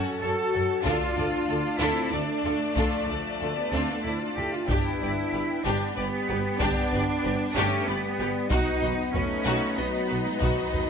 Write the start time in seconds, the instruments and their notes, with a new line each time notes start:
Already playing: violin section C#4 F#4, string section C#4 F#4 C#5 A5, viola section A4
0.21 double bass section F#2, french horn section F#4, cello section A4, viola section A4, violin section A4 C#5
0.54 double bass section F#2, violin section F#4 A4, viola section A4
0.84 double bass section D2, string section A3 D4 D5 A5, violin section D4 F4, french horn section D4, cello section F4, viola section A4, taiko
1.16 double bass section D2, violin section A4 D5, viola section A4
1.49 double bass section D2, violin section F4 A4, viola section A4
1.80 double bass section D2, french horn section C4, violin section D4 F4, cello section E4, viola section A4
2.12 double bass section D2, french horn section A3, cello section D4, viola section A4, violin section A4 D5
2.44 double bass section D2, violin section F4 A4, viola section A4
2.75 double bass section D2, french horn section F3, cello section A3, violin section D4 F4, viola section A4, taiko
3.08 double bass section D2, violin section A4 D5, viola section A4
3.40 double bass section D2, violin section F4 A4, viola section A4
3.57 french horn section G3, cello section B3
3.72 double bass section D2, french horn section A3, cello section C4, violin section D4 F4, viola section A4
3.90 french horn section B3, cello section D4
4.04 double bass section D2, french horn section C4, cello section E4, viola section A4, violin section A4 D5
4.21 french horn section D4, cello section F4
4.36 double bass section D2, french horn section E4, violin section F4 A4, cello section G4, viola section A4
4.53 french horn section D4, cello section F4
4.68 double bass section G1, string section B3 B4 G5, violin section D4 G4, french horn section D4, cello section E4, viola section G4, taiko
5.01 double bass section G1, viola section G4, violin section B4 D5
5.33 double bass section G1, violin section G4 B4, viola section G4
5.64 double bass section G1, french horn section B3, violin section D4 G4, cello section D4, viola section G4
5.95 double bass section G1, french horn section G3, cello section B3, viola section G4, violin section B4 D5
6.27 double bass section G1, violin section G4 B4, viola section G4
6.60 double bass section G1, french horn section B3, violin section D4 G4, cello section D4, viola section G4, taiko
6.92 double bass section G1, viola section G4, violin section B4 D5
7.24 double bass section G1, violin section G4 B4, viola section G4
7.56 double bass section G1, french horn section A3, cello section C#4, violin section D4 G4, viola section G4
7.87 double bass section G1, french horn section G3, cello section B3, viola section G4, violin section B4 D5
8.19 double bass section G1, violin section G4 B4, viola section G4
8.50 double bass section B1, string section B3 D#4 B4 D#5, french horn section B3, cello section D#4, violin section D#4 F#4, viola section F#4, taiko
8.81 double bass section B1, viola section F#4, violin section B4 D#5, taiko low
9.13 double bass section B1, french horn section A3, cello section C#4, violin section F#4 B4, viola section F#4, taiko low
9.44 double bass section B1, violin section D#4 F#4, viola section F#4
9.77 double bass section B1, french horn section F#3, cello section B3, viola section F#4, violin section B4 D#5
10.08 double bass section B1, violin section F#4 B4, viola section F#4
10.26 french horn section E3, cello section G#3
10.40 double bass section B1, french horn section D#3, cello section F#3, violin section D#4 F#4, viola section F#4, taiko
10.73 double bass section B1, viola section F#4, violin section B4 D#5, taiko low